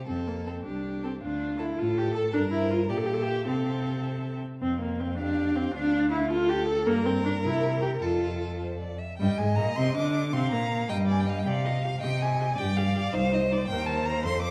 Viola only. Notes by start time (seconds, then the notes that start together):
0.08 C4
0.27 A#3
0.46 C4
0.66 D4
1.04 C4
1.22 D4
1.60 E4
1.78 F4
1.98 G4
2.14 A4
2.33 D4
2.52 E4
2.71 F4
2.90 G4
2.97 A4
3.06 G4
3.14 A4
3.22 G4
3.47 C4
4.62 C4
4.81 A#3
5.00 C4
5.18 D4
5.56 C4
5.74 D4
6.11 E4
6.30 F4
6.49 G4
6.68 A4
6.87 A#3
7.06 C4
7.25 D4
7.44 E4
7.82 G4
8.01 F4
9.20 G3
9.39 G#3
9.58 A#3
9.78 C4
9.96 D4
10.35 C4
10.52 A#3
10.89 G3
11.46 G4
11.65 G4
11.84 G4
12.03 G4
12.22 G4
12.40 G4
12.59 G4
12.77 G4
12.95 G4
13.13 D#4
13.31 D#4
13.51 D#4
13.70 A#4
14.25 A4